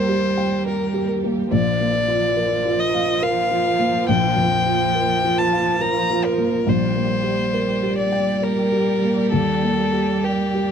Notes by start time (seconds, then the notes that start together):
Already playing: D#2 G3 A#3 G4 A#4 C5
0.09 G4
0.37 G5
0.66 A#4
0.94 G4
1.24 A#3
1.52 A#1 F3 A#3 F4 A#4 D5
1.81 A#3
2.08 F4
2.37 A#4
2.65 F4
2.80 D#5
2.94 F5
3.22 A#4 F5
3.51 F4
3.79 A#3
4.09 A#1 G5
4.37 F2
4.66 F4
4.95 A#4
5.24 F4
5.38 A5
5.52 F5
5.81 A#4 A#5
6.10 F4
6.24 A#4
6.38 A#3
6.67 A#1 G3 A#3 G4 C5 D5
6.96 A#3
7.23 G4
7.54 A#4
7.83 G4
7.98 D5
8.12 G5
8.42 A#4
8.72 G4
9.02 A#3
9.32 D#2 A4
9.63 A#3
9.93 G4
10.24 G4 A#4
10.55 G4